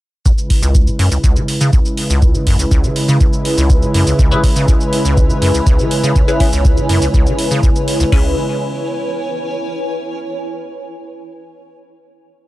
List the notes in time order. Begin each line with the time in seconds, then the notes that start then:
0.25 C#2 C#3 G#3 E4 B4, kick, shaker
0.38 shaker
0.50 kick, open hi-hat
0.62 C#2, shaker
0.71 B4, kick, shaker
0.87 E3, shaker
0.99 F#2, open hi-hat
1.12 C#2, shaker
1.23 C#2 C#5, kick, shaker
1.36 E3, shaker
1.48 open hi-hat
1.61 C#3, shaker
1.73 C#2 G#5, kick, shaker
1.85 shaker
1.98 open hi-hat
2.10 C#2, shaker
2.22 kick, shaker
2.35 E3, shaker
2.47 F#2, kick, open hi-hat
2.59 C#2, shaker
2.71 C#2, kick, shaker
2.84 E3, shaker
2.96 open hi-hat
3.08 C#3, shaker
3.21 C#2, kick, shaker
3.33 shaker
3.45 open hi-hat
3.58 C#2, shaker
3.70 kick, shaker
3.82 E3, shaker
3.94 F#2, open hi-hat
4.07 C#2, shaker
4.19 C#2, kick, shaker
4.31 E3 C#4 E4 G#4 B4, shaker
4.44 kick, open hi-hat
4.56 C#3, shaker
4.68 C#2, kick, shaker
4.81 shaker
4.93 open hi-hat
5.05 C#2, shaker
5.17 kick, shaker
5.30 E3, shaker
5.42 F#2, open hi-hat
5.54 C#2, shaker
5.67 C#2, kick, shaker
5.79 E3, shaker
5.91 open hi-hat
6.03 C#3, shaker
6.16 C#2, kick, shaker
6.28 C#4 E4 G#4 B4, shaker
6.40 C#4 E4 G#4 B4, kick, open hi-hat
6.53 C#2, shaker
6.65 kick, shaker
6.77 E3, shaker
6.89 F#2, open hi-hat
7.02 C#2, shaker
7.14 C#2, kick, shaker
7.26 E3, shaker
7.39 open hi-hat
7.51 C#3, shaker
7.63 C#2, kick, shaker
7.76 shaker
7.88 open hi-hat
8.00 C#2, shaker
8.12 C#2 C#3 G#3 C#4 E4 G#4 B4, kick, crash
8.20 B4
8.27 C#5
8.35 G#5